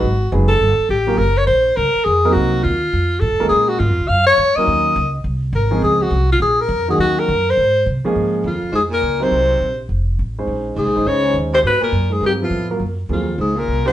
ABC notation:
X:1
M:4/4
L:1/8
Q:"Swing" 1/4=207
K:Db
V:1 name="Alto saxophone"
G2 z =A3 =G2 | B d c2 B2 A2 | G2 F4 =A2 | A G F2 f d2 e- |
e3 z3 B2 | A G2 F A B2 A | G B2 c3 z2 | z2 F2 A B2 c- |
c3 z4 z | z2 A2 d2 z c | _c B2 A =G F2 z | z2 F2 A B2 c |]
V:2 name="Grand piano"
z2 [G,A,_CEA] z4 [G,B,DFB] | z6 z [G,B,CEB]- | [G,B,CEB]2 z4 z [A,B,DFB]- | [A,B,DFB]2 z4 z [G,B,DEB]- |
[G,B,DEB]2 z4 z [F,A,CDA]- | [F,A,CDA]2 z4 z [E,G,B,DG]- | [E,G,B,DG]2 z4 z [F,A,B,DA]- | [F,A,B,DA]2 z4 z [G,CEB]- |
[G,CEB]2 z4 z [^G,^CE=c]- | [^G,^CE=c]2 z [A,DEc]2 [A,DEc]3 | z4 [G,CFB] [F,=B,=E=A]2 [G,_B,FB] | z2 [G,B,FA] z4 [G,DEG] |]
V:3 name="Baritone saxophone" clef=bass
z8 | z8 | z8 | z8 |
z8 | z8 | z8 | z2 F,,2 A,, B,,2 C,- |
C,3 z4 z | z2 A,,2 D,2 z C, | _C, B,,2 A,, =G,, F,,2 z | z2 F,,2 A,, B,,2 C, |]
V:4 name="Upright bass" clef=bass
A,,,2 G,,,2 =G,,, z =A,,,2 | G,,,2 B,,,2 D,, z F,,2 | C,,2 E,,2 F,,2 (3=A,, F,, E,, | B,,2 (3A,, F,, D,, G,,2 F,, z |
E,,2 D,,2 C,,2 A,,,2 | D,,2 C,,2 B,,,2 F,,2 | E,,2 G,,2 A,,2 C, z | A,,2 E,, z F,,2 D,,2 |
C,,2 B,,,2 F,,,2 =A,,,2 | B,,,2 (3C,, B,,, A,,, D,,2 E,,2 | A,, z G,,2 =G,,2 =A,,2 | G,,2 E,,2 D,,2 C,,2 |]